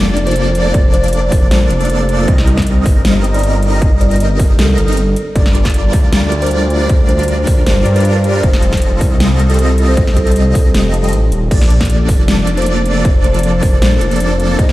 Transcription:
Already playing: detuned saw bass F1, supersaw synth F3 A#3 D4 A4 D5, digital synth lead D5, impact
0.17 closed hi-hat
0.27 kalimba C5, closed hi-hat
0.31 closed hi-hat
0.36 supersaw synth F3 A#3 D4 A4 D5, digital synth lead D5, closed hi-hat
0.55 closed hi-hat
0.65 kalimba D5
0.74 supersaw synth F3 A#3 D4 A4 D5, digital synth lead D5, kick, closed hi-hat
0.94 kalimba C5, closed hi-hat
1.04 closed hi-hat
1.08 closed hi-hat
1.13 closed hi-hat
1.32 detuned saw bass F1, kick, open hi-hat
1.51 detuned saw bass A#1, kalimba C5, snare, closed hi-hat
1.70 detuned saw bass F1, closed hi-hat
1.81 closed hi-hat
1.85 closed hi-hat
1.90 supersaw synth F3 A#3 D4 A4 D5, digital synth lead D5, closed hi-hat
2.09 closed hi-hat
2.28 detuned saw bass C2, supersaw synth G3 C4 D#4 A#4 D#5, digital synth lead D#5, kalimba D#5, kick, closed hi-hat
2.38 snare
2.47 closed hi-hat
2.57 kick, snare, closed hi-hat
2.62 closed hi-hat
2.67 closed hi-hat
2.86 detuned saw bass G1, kick, open hi-hat
3.05 snare, closed hi-hat
3.24 closed hi-hat
3.34 kalimba D5, closed hi-hat
3.39 closed hi-hat
3.43 supersaw synth G3 C4 D#4 A#4 D#5, digital synth lead D#5, closed hi-hat
3.63 closed hi-hat
3.73 kalimba D#5
3.82 supersaw synth G3 C4 D#4 A#4 D#5, digital synth lead D#5, kick, closed hi-hat
4.01 kalimba D5, closed hi-hat
4.11 closed hi-hat
4.16 closed hi-hat
4.20 closed hi-hat
4.39 detuned saw bass G1, kalimba A#4, kick, open hi-hat
4.58 detuned saw bass C2, kalimba A4, snare, closed hi-hat
4.78 detuned saw bass G1, closed hi-hat
4.88 closed hi-hat
4.93 closed hi-hat
4.97 closed hi-hat
5.16 closed hi-hat
5.35 detuned saw bass G1, supersaw synth G3 D4 F4 A#4 D5, kalimba D5, digital synth lead D5, kick, closed hi-hat, ride
5.46 snare
5.55 closed hi-hat
5.65 kick, snare, closed hi-hat
5.70 closed hi-hat
5.74 closed hi-hat
5.93 detuned saw bass D2, kick, open hi-hat
6.13 snare, closed hi-hat, ride
6.32 closed hi-hat
6.42 kalimba C5, closed hi-hat
6.46 closed hi-hat
6.51 supersaw synth G3 D4 F4 A#4 D5, digital synth lead D5, closed hi-hat
6.70 closed hi-hat
6.81 kalimba D5
6.89 supersaw synth G3 D4 F4 A#4 D5, digital synth lead D5, kick, closed hi-hat, ride
7.09 kalimba C5, closed hi-hat
7.19 closed hi-hat
7.23 closed hi-hat
7.28 closed hi-hat
7.47 detuned saw bass D2, kalimba A#4, kick, open hi-hat
7.66 detuned saw bass G1, kalimba C5, snare, closed hi-hat, ride
7.86 detuned saw bass G2, closed hi-hat
7.96 closed hi-hat
8.00 closed hi-hat
8.05 supersaw synth G3 D4 F4 A#4 D5, digital synth lead D5, closed hi-hat
8.24 closed hi-hat
8.43 detuned saw bass F1, supersaw synth G3 C4 F4 A4 D#5, kalimba C5, digital synth lead D#5, kick, closed hi-hat, ride
8.53 snare
8.62 closed hi-hat
8.73 kick, snare, closed hi-hat
8.77 closed hi-hat
8.82 closed hi-hat
9.01 detuned saw bass C2, kick, open hi-hat
9.20 snare, closed hi-hat, ride
9.39 closed hi-hat
9.50 kalimba A4, closed hi-hat
9.54 closed hi-hat
9.59 supersaw synth G3 C4 F4 A4 D#5, digital synth lead D#5, closed hi-hat
9.78 closed hi-hat
9.88 kalimba C5
9.97 supersaw synth G3 C4 F4 A4 D#5, digital synth lead D#5, kick, closed hi-hat, ride
10.07 snare
10.16 kalimba A4, kick, closed hi-hat
10.27 closed hi-hat
10.31 closed hi-hat
10.36 closed hi-hat
10.55 detuned saw bass C2, kalimba A4, kick, open hi-hat
10.74 detuned saw bass F1, kalimba G4, snare, closed hi-hat, ride
10.94 closed hi-hat
11.04 closed hi-hat
11.09 closed hi-hat
11.13 detuned saw bass A1, closed hi-hat
11.32 detuned saw bass D#1, closed hi-hat
11.51 detuned saw bass A#1, supersaw synth F3 A#3 D4 A4 D5, kalimba D5, digital synth lead D5, kick, closed hi-hat, ride, crash
11.62 snare
11.70 closed hi-hat
11.81 kick, snare, closed hi-hat
11.85 closed hi-hat
11.90 closed hi-hat
12.09 detuned saw bass F1, kick, open hi-hat
12.28 snare, closed hi-hat, ride
12.47 closed hi-hat
12.57 kalimba C5, closed hi-hat
12.62 closed hi-hat
12.66 supersaw synth F3 A#3 D4 A4 D5, digital synth lead D5, closed hi-hat
12.86 closed hi-hat
12.96 kalimba D5
13.05 supersaw synth F3 A#3 D4 A4 D5, digital synth lead D5, kick, closed hi-hat, ride
13.24 kalimba C5, closed hi-hat
13.34 closed hi-hat
13.39 closed hi-hat
13.43 closed hi-hat
13.63 detuned saw bass F1, kalimba A#4, kick, open hi-hat
13.82 detuned saw bass A#1, kalimba C5, snare, closed hi-hat, ride
14.01 detuned saw bass F1, closed hi-hat
14.11 closed hi-hat
14.16 closed hi-hat
14.20 supersaw synth F3 A#3 D4 A4 D5, digital synth lead D5, closed hi-hat
14.40 closed hi-hat
14.59 detuned saw bass C2, supersaw synth G3 C4 D#4 A#4 D#5, digital synth lead D#5, kalimba D#5, kick, closed hi-hat, ride
14.69 snare

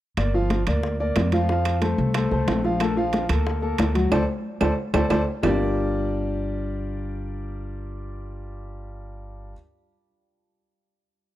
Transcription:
0.17 upright bass G1, grand piano A#3 A#4 D5, high bongo, high conga, high timbale, claves
0.34 grand piano F3 F4 F5, high conga
0.50 high bongo, high conga, high timbale
0.67 upright bass D2, grand piano A#3 A#4 D5, high conga, high timbale, claves
0.83 high bongo, high conga
1.00 grand piano A#3 A#4 D5, high conga
1.16 upright bass F2, high bongo, low bongo, high conga, high timbale, low timbale, claves
1.32 grand piano F3 F4 F5, high conga, high timbale
1.49 grand piano F3 F4 F5, high bongo, high conga
1.65 high bongo, high conga, high timbale, claves
1.82 grand piano A3 A4 C5, high bongo, high conga, high timbale
1.98 upright bass C2, high conga
2.14 grand piano A3 A4 C5, high bongo, high conga, high timbale, claves
2.31 upright bass C2, grand piano A3 A4 C5, high bongo, high conga
2.47 upright bass A#1, high bongo, low bongo, high conga, high timbale, low timbale
2.64 grand piano F3 F4 F5, high bongo, high conga
2.80 grand piano A3 A4 A#4, high bongo, high conga, high timbale, claves
2.97 grand piano F3 F4 F5, high conga
3.13 high bongo, high conga, high timbale
3.29 upright bass D2, grand piano A#3 A4 A#4, high conga, high timbale, claves
3.47 high bongo, high conga
3.62 grand piano A#3 A4 A#4, high conga
3.78 upright bass D2, high bongo, low bongo, high conga, high timbale, claves
3.95 grand piano F#3 F#4 F#5, high conga, high timbale
4.12 upright bass D2, grand piano A4 C5 D5, high bongo, high conga, high timbale, claves
4.61 upright bass D2, grand piano A4 C5 D5, high bongo, high conga, high timbale, claves
4.94 upright bass D2, grand piano A4 C5 D5, high bongo, high conga, high timbale, claves
5.10 upright bass D2, grand piano A4 C5 D5, high bongo, high conga, high timbale, claves
5.42 upright bass G1, grand piano G3 D4 F4 G4 A#4 D5, low bongo, low conga, low timbale, claves

